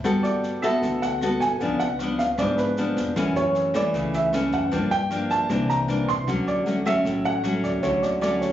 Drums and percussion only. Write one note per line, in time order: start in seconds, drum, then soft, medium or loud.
0.04 kick soft
0.04 cross-stick medium
0.04 snare soft
0.24 snare soft
0.43 snare soft
0.63 kick soft
0.63 cross-stick medium
0.63 snare soft
0.82 kick medium
0.82 snare soft
1.02 snare soft
1.21 cross-stick soft
1.21 snare soft
1.41 kick soft
1.41 snare soft
1.60 kick medium
1.60 snare soft
1.79 snare soft
1.99 cross-stick soft
1.99 snare soft
2.19 kick soft
2.19 snare soft
2.38 kick medium
2.38 cross-stick medium
2.38 snare soft
2.57 snare soft
2.77 snare soft
2.97 kick soft
2.97 snare soft
3.16 kick soft
3.16 cross-stick soft
3.16 snare soft
3.36 snare soft
3.55 snare soft
3.74 kick soft
3.74 cross-stick medium
3.74 snare soft
3.94 kick soft
3.94 snare soft
4.13 snare soft
4.33 cross-stick medium
4.33 snare soft
4.52 kick soft
4.52 snare soft
4.72 kick medium
4.72 snare soft
4.91 snare soft
5.11 cross-stick soft
5.11 snare soft
5.30 kick soft
5.30 snare soft
5.50 kick medium
5.50 cross-stick medium
5.50 snare soft
5.69 snare soft
5.89 snare soft
6.08 kick soft
6.08 snare soft
6.28 kick medium
6.28 cross-stick medium
6.28 snare soft
6.47 snare soft
6.67 snare soft
6.86 kick soft
6.86 cross-stick medium
6.86 snare soft
7.05 kick soft
7.05 snare soft
7.25 snare soft
7.44 cross-stick soft
7.44 snare soft
7.64 kick soft
7.64 snare soft
7.83 kick medium
7.83 snare soft
8.03 snare soft
8.22 cross-stick soft
8.22 snare soft
8.42 kick soft
8.42 snare soft